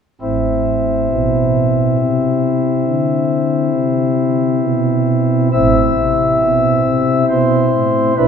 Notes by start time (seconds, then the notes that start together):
0.21 A1 A2 C4 E4
1.12 B2
1.99 C3
2.86 D3
3.73 C3
4.62 B2
5.52 A1 A2 C4 E4 E5
5.98 C3
6.41 B2
6.85 C3
7.29 B2 C5
7.73 A2
8.17 B1 B2 D4 E4 B4